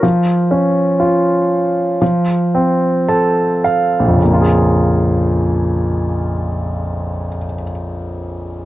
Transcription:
<<
  \new Staff \with { instrumentName = "Grand piano" } { \time 4/4 \key bes \minor \tempo 4 = 54 r2. a''8 f''8 | r1 | }
  \new Staff \with { instrumentName = "Grand piano" } { \time 4/4 \key bes \minor f8 des'8 f'4 f8 c'8 a'4 | <bes,, f, des bes f' aes'>1 | }
>>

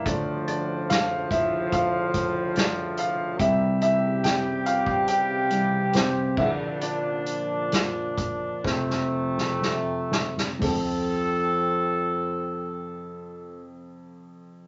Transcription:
<<
  \new Staff \with { instrumentName = "Upright piano" } { \time 4/4 \key f \major \tempo 4 = 68 <d' d''>8 <d' d''>8 <f' f''>8 <e' e''>8 <f' f''>4 <d' d''>8 <f' f''>8 | <e' e''>8 <e' e''>8 <g' g''>8 <f' f''>8 <g' g''>4 <c' c''>8 <e' e''>8 | <d' d''>2 <c' c''>4. r8 | <f c' a'>1 | }
  \new Staff \with { instrumentName = "Upright piano" } { \clef bass \time 4/4 \key f \major <d f a>1 | <c e g>4. r4 <c e g>8 r8 <bes, d f>8 | r2 <f, c a>4. r8 | f,1 | }
  \new Staff \with { instrumentName = "Brass ensemble" } { \clef bass \time 4/4 \key f \major <d, a, f>1 | <c g g'>2.~ <c g g'>8 <bes, f d'>8~ | <bes, f d'>2 <f, c a>2 | <f c' a'>1 | }
  \new DrumStaff \with { instrumentName = "Drums" } \drummode { \time 4/4 <hh bd>8 hh8 <hh sn>8 <hh bd>8 <hh bd>8 <hh bd>8 <hh sn>8 hh8 | <hh bd>8 hh8 <hh sn>8 hh16 bd16 hh8 hh8 <hh sn>8 <cymc bd>8 | hh8 hh8 <hh sn>8 <hh bd>8 <bd sn>16 sn8 sn16 sn8 sn16 sn16 | <hho bd tomfh>4 r4 r4 r4 | }
>>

